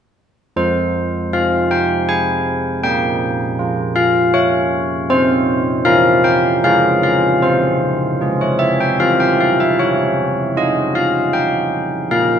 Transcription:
0.56 2.82 F3 soft
0.56 1.31 C5 medium
1.33 2.85 C4 soft
1.33 1.70 F5 medium
1.71 2.08 G5 medium
2.09 2.82 G#5 medium
2.84 5.06 A#3 medium
2.84 3.93 G5 medium
3.59 5.10 F4 soft
3.96 4.33 F5 medium
4.34 5.07 C#5 medium
5.09 6.60 C4 medium
5.09 5.83 C5 medium
5.85 6.60 E4 soft
5.85 6.60 A#4 soft
5.85 6.23 F5 medium
6.24 6.62 G5 medium
6.64 7.41 C#4 medium
6.64 7.39 F4 soft
6.64 7.39 G#4 soft
6.64 7.02 F5 medium
7.03 7.41 F5 medium
7.42 8.96 C4 soft
7.42 8.37 C5 medium
8.21 8.96 F4 soft
8.21 8.97 G#4 soft
8.41 8.61 C#5 medium
8.59 8.80 E5 medium
8.80 9.00 G5 medium
9.00 9.77 C4 soft
9.00 9.75 E4 soft
9.00 9.75 G4 soft
9.00 9.20 F5 medium
9.20 9.40 G5 medium
9.40 9.60 F5 medium
9.60 9.80 E5 medium
9.79 12.07 C#4 soft
9.79 10.54 C#5 medium
10.57 12.11 F4 soft
10.57 10.94 D#5 medium
10.95 11.32 F5 medium
11.33 12.07 G5 medium
12.11 12.39 A#3 soft
12.11 12.39 F5 medium

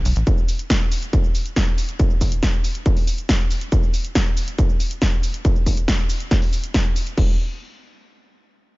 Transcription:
0.05 0.13 B1 loud
0.05 open hi-hat loud
0.05 shaker medium
0.16 0.23 A1 medium
0.16 closed hi-hat medium
0.16 shaker soft
0.27 kick loud
0.27 closed hi-hat medium
0.27 shaker soft
0.38 shaker soft
0.48 open hi-hat loud
0.48 shaker medium
0.59 closed hi-hat medium
0.59 shaker soft
0.70 kick loud
0.70 snare loud
0.70 closed hi-hat medium
0.70 shaker soft
0.81 shaker soft
0.92 open hi-hat loud
0.92 shaker medium
1.02 closed hi-hat medium
1.02 shaker soft
1.13 kick loud
1.13 closed hi-hat medium
1.13 shaker soft
1.24 shaker soft
1.35 open hi-hat loud
1.35 shaker medium
1.46 closed hi-hat medium
1.46 shaker soft
1.56 kick loud
1.56 snare loud
1.56 closed hi-hat medium
1.56 shaker soft
1.67 shaker soft
1.78 open hi-hat loud
1.78 shaker medium
1.89 closed hi-hat medium
1.89 shaker soft
1.99 kick loud
1.99 closed hi-hat medium
1.99 shaker soft
2.10 shaker soft
2.21 kick medium
2.21 open hi-hat loud
2.21 shaker medium
2.32 closed hi-hat medium
2.32 shaker soft
2.43 kick loud
2.43 snare loud
2.43 closed hi-hat medium
2.43 shaker soft
2.53 shaker soft
2.64 open hi-hat loud
2.64 shaker medium
2.75 closed hi-hat medium
2.75 shaker soft
2.86 kick loud
2.86 closed hi-hat medium
2.86 shaker soft
2.97 open hi-hat medium
2.97 shaker soft
3.07 open hi-hat loud
3.07 shaker medium
3.18 closed hi-hat medium
3.18 shaker soft
3.29 kick loud
3.29 snare loud
3.29 closed hi-hat medium
3.29 shaker soft
3.40 shaker soft
3.51 open hi-hat loud
3.51 shaker medium
3.61 closed hi-hat medium
3.61 shaker soft
3.72 kick loud
3.72 closed hi-hat medium
3.72 shaker soft
3.83 shaker soft
3.94 open hi-hat loud
3.94 shaker medium
4.05 closed hi-hat medium
4.05 shaker soft
4.15 kick loud
4.15 snare loud
4.15 closed hi-hat medium
4.15 shaker soft
4.26 shaker soft
4.37 open hi-hat loud
4.37 shaker medium
4.48 closed hi-hat medium
4.48 shaker soft
4.58 kick loud
4.58 closed hi-hat medium
4.58 shaker soft
4.69 shaker soft
4.80 open hi-hat loud
4.80 shaker medium
4.91 closed hi-hat medium
4.91 shaker soft
5.02 kick loud
5.02 snare loud
5.02 closed hi-hat medium
5.02 shaker soft
5.13 shaker soft
5.23 open hi-hat loud
5.23 shaker medium
5.34 closed hi-hat medium
5.34 shaker soft
5.45 kick loud
5.45 closed hi-hat medium
5.45 shaker soft
5.56 shaker soft
5.66 kick medium
5.66 open hi-hat loud
5.66 shaker medium
5.77 closed hi-hat medium
5.77 shaker soft
5.88 kick loud
5.88 snare loud
5.88 closed hi-hat medium
5.88 shaker soft
5.99 shaker soft
6.10 open hi-hat loud
6.10 shaker medium
6.20 closed hi-hat medium
6.20 shaker soft
6.31 kick loud
6.31 snare medium
6.31 closed hi-hat medium
6.31 shaker soft
6.42 open hi-hat medium
6.42 shaker soft
6.53 open hi-hat loud
6.53 shaker medium
6.64 closed hi-hat medium
6.64 shaker soft
6.74 kick loud
6.74 snare loud
6.74 closed hi-hat medium
6.74 shaker soft
6.85 shaker soft
6.96 open hi-hat loud
6.96 shaker medium
7.07 closed hi-hat medium
7.07 shaker soft
7.17 7.38 E1 loud
7.17 kick loud
7.17 crash medium

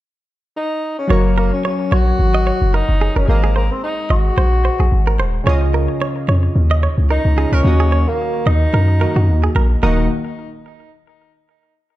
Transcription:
0.57 0.95 D#4 medium
0.99 1.12 C#4 medium
1.08 1.51 F#1 loud
1.08 3.23 F#3 medium
1.08 1.38 A#3 medium
1.08 3.24 F#4 medium
1.08 3.25 A#4 medium
1.08 1.20 C#5 medium
1.12 3.25 C#5 medium
1.38 1.52 A#3 medium
1.38 1.48 A#4 medium
1.53 1.64 C#4 medium
1.65 1.94 C#4 loud
1.65 1.75 C#5 medium
1.92 2.12 A#1 medium
1.92 2.76 F#4 loud
1.92 2.02 C#5 medium
2.19 2.51 G#1 medium
2.35 2.43 D#5 medium
2.47 2.57 C#5 medium
2.61 2.82 F#1 medium
2.74 3.18 D#4 loud
2.74 2.84 A#4 medium
2.89 3.09 F#1 medium
3.01 3.11 G#4 medium
3.16 3.25 F#1 medium
3.16 3.29 C#4 medium
3.16 3.24 A#4 medium
3.26 3.69 G#1 loud
3.26 5.41 G#3 medium
3.26 3.54 A#3 medium
3.26 5.42 G#4 medium
3.26 5.43 C5 medium
3.31 5.44 D#5 medium
3.44 3.52 G#4 medium
3.56 3.73 A#3 medium
3.56 3.66 C5 medium
3.71 3.83 C4 medium
3.84 4.09 D#4 medium
4.10 4.31 G#1 medium
4.10 5.16 F#4 loud
4.10 4.20 D#5 medium
4.37 4.69 A#1 medium
4.37 4.48 C5 medium
4.65 4.75 C5 medium
4.80 4.89 A#1 medium
4.80 4.88 G#4 medium
4.92 5.21 G#1 medium
5.07 5.15 A#4 medium
5.19 5.40 D#1 loud
5.19 5.30 C5 medium
5.44 5.88 C#2 loud
5.44 7.32 C#3 medium
5.44 7.33 C#4 medium
5.44 7.34 F4 medium
5.44 5.57 C#5 medium
5.49 7.35 D#5 medium
5.74 5.84 A#4 medium
6.02 6.11 C#5 medium
6.28 6.49 F2 medium
6.28 6.39 C#5 medium
6.56 6.87 D#2 loud
6.71 6.79 D#5 medium
6.83 6.93 C#5 medium
6.98 7.18 C#2 medium
7.11 7.55 D#4 loud
7.11 7.20 A#4 medium
7.25 7.46 C#2 medium
7.36 7.64 C#3 soft
7.36 7.64 C#4 soft
7.36 7.65 F4 soft
7.36 7.53 G#4 medium
7.36 7.65 D#5 medium
7.52 7.62 C#2 medium
7.52 8.10 C#4 loud
7.52 7.61 A#4 medium
7.62 8.06 D#2 loud
7.62 8.97 D#3 medium
7.62 8.98 A#3 medium
7.62 8.99 F#4 medium
7.67 9.00 D#5 medium
7.80 7.88 G#4 medium
7.92 8.02 C#5 medium
8.08 8.49 A#3 medium
8.46 8.67 D#2 medium
8.46 9.56 D#4 loud
8.46 8.57 D#5 medium
8.74 9.06 F#2 loud
8.74 8.84 A#4 medium
9.00 9.82 D#3 soft
9.00 9.82 A#3 soft
9.00 9.82 F#4 soft
9.00 9.11 A#4 medium
9.00 9.82 D#5 medium
9.16 9.29 F#2 medium
9.16 9.24 F#4 medium
9.28 9.49 D#2 medium
9.44 9.52 G#4 medium
9.55 9.76 A#1 medium
9.55 9.66 A#4 medium
9.83 10.08 D#1 loud
9.83 10.08 D#3 medium
9.83 10.08 A#3 medium
9.83 10.09 D#4 medium
9.83 10.08 F#4 medium
9.83 9.99 A#4 medium
9.83 10.08 D#5 medium

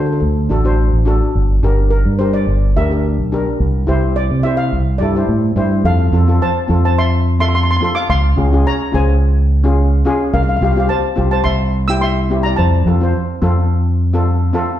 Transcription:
0.00 0.20 D3 medium
0.00 0.28 D4 medium
0.00 0.29 F#4 medium
0.00 0.29 C5 medium
0.06 0.11 A4 soft
0.13 0.19 A4 medium
0.20 0.48 D2 medium
0.20 0.27 A4 soft
0.49 0.91 A1 medium
0.49 0.59 D4 medium
0.49 0.59 F#4 medium
0.49 0.60 A4 medium
0.64 0.90 D4 medium
0.64 0.90 F#4 medium
0.64 0.91 C5 medium
0.93 1.20 A1 medium
1.05 1.34 D4 medium
1.05 1.35 F#4 medium
1.05 1.35 A4 loud
1.35 1.62 G1 loud
1.63 2.04 G1 medium
1.63 1.97 D4 medium
1.63 1.98 G4 medium
1.63 1.98 A#4 medium
1.91 2.20 A#4 medium
2.05 2.45 G2 medium
2.19 2.53 D4 medium
2.19 2.54 G4 medium
2.19 2.54 A#4 medium
2.19 2.34 C5 medium
2.33 2.77 D5 medium
2.47 2.74 G1 medium
2.76 3.16 D2 medium
2.76 2.85 D4 medium
2.76 2.85 G4 medium
2.76 2.86 A#4 medium
2.76 3.29 E5 medium
2.90 3.15 D4 medium
2.90 3.16 G4 medium
2.90 3.17 A#4 medium
3.18 3.45 B1 medium
3.32 3.60 D4 medium
3.32 3.60 G4 medium
3.32 3.61 A#4 medium
3.60 3.87 C2 loud
3.87 4.29 C2 medium
3.87 4.22 E4 medium
3.87 4.22 G4 medium
3.87 4.23 C5 medium
4.16 4.45 D5 loud
4.31 4.70 C3 loud
4.43 4.78 E4 medium
4.43 4.79 G4 medium
4.43 4.79 C5 medium
4.43 4.59 E5 medium
4.57 5.01 F5 medium
4.72 4.99 C2 medium
4.98 5.27 G2 medium
4.98 5.10 E4 medium
4.98 5.10 G4 medium
4.98 5.10 A4 medium
4.98 5.52 D5 medium
5.15 5.40 E4 medium
5.15 5.41 G4 medium
5.15 5.41 C5 medium
5.28 5.54 A2 medium
5.56 5.82 G2 medium
5.56 5.84 E4 medium
5.56 5.85 G4 medium
5.56 5.85 C5 medium
5.84 6.11 F2 loud
5.84 6.37 A4 medium
5.84 6.37 F5 medium
6.12 6.39 F2 loud
6.12 6.22 C4 medium
6.12 6.22 F4 medium
6.12 6.23 A4 medium
6.27 6.53 C4 medium
6.27 6.53 F4 medium
6.27 6.54 A4 medium
6.42 6.82 C5 medium
6.42 6.82 A5 medium
6.68 7.77 F2 loud
6.68 7.12 C4 medium
6.68 7.12 F4 medium
6.68 7.13 A4 medium
6.85 6.97 C5 medium
6.85 6.98 A5 medium
6.98 7.38 E5 medium
6.98 7.39 C6 medium
7.39 7.65 C4 medium
7.39 7.65 F4 medium
7.39 7.66 A4 medium
7.39 7.47 E5 medium
7.39 7.47 C6 loud
7.49 7.54 C6 medium
7.55 7.62 C6 loud
7.63 7.70 C6 medium
7.71 7.75 C6 medium
7.77 8.09 C4 medium
7.77 7.83 C6 medium
7.82 8.10 F4 medium
7.82 8.10 A4 medium
7.82 7.92 C6 medium
7.95 8.08 F5 medium
7.95 8.09 D6 loud
8.09 8.36 C#2 loud
8.09 8.62 F5 medium
8.09 8.62 C6 loud
8.36 8.64 C#2 loud
8.36 8.46 C#4 medium
8.36 8.46 F4 medium
8.36 8.47 G#4 medium
8.52 8.77 C#4 medium
8.52 8.78 F4 medium
8.52 8.78 G#4 medium
8.67 8.92 C#5 medium
8.67 8.95 A#5 loud
8.92 10.02 C#2 medium
8.92 9.36 C#4 medium
8.92 9.36 F4 medium
8.92 9.37 G#4 medium
8.92 10.03 C5 medium
8.92 10.02 G#5 medium
9.64 9.89 C#4 medium
9.64 9.90 F4 medium
9.64 9.90 G#4 medium
10.05 10.34 C#4 loud
10.05 10.34 F4 medium
10.05 10.34 G#4 loud
10.33 10.60 C2 loud
10.33 10.41 A#4 medium
10.33 10.41 F5 medium
10.43 10.48 F5 medium
10.49 10.55 F5 medium
10.57 10.63 F5 medium
10.61 10.88 C2 loud
10.61 10.70 C4 medium
10.61 10.71 F4 medium
10.61 10.71 G4 medium
10.61 10.71 F5 medium
10.72 11.01 C4 medium
10.72 10.79 F5 medium
10.76 11.02 F4 medium
10.76 11.02 G4 medium
10.76 10.86 F5 medium
10.89 11.30 C5 medium
10.89 11.30 A5 medium
11.16 11.44 C2 medium
11.16 11.45 C4 medium
11.16 11.45 F4 medium
11.16 11.46 G4 medium
11.31 11.45 C5 medium
11.31 11.46 A5 medium
11.44 12.54 C2 loud
11.44 11.86 E5 medium
11.44 11.89 C6 loud
11.88 12.14 C4 medium
11.88 12.14 E4 medium
11.88 12.15 G4 medium
11.88 12.02 G5 medium
11.88 12.01 E6 loud
12.01 12.43 E5 medium
12.01 12.42 C6 loud
12.30 12.58 C4 medium
12.30 12.59 E4 medium
12.30 12.59 G4 medium
12.43 12.52 D5 medium
12.43 12.50 A#5 loud
12.56 12.85 F2 loud
12.56 14.23 C5 medium
12.56 14.22 A5 medium
12.86 13.13 F2 loud
12.86 12.96 C4 medium
12.86 12.96 F4 medium
12.86 12.96 A4 medium
13.01 13.26 C4 medium
13.01 13.27 F4 medium
13.01 13.27 C5 medium
13.42 14.51 F2 medium
13.42 13.85 C4 loud
13.42 13.86 F4 medium
13.42 13.86 A4 medium
14.13 14.39 C4 medium
14.13 14.39 F4 medium
14.13 14.40 A4 medium
14.53 14.80 C4 medium
14.53 14.80 F4 medium
14.53 14.80 A4 loud

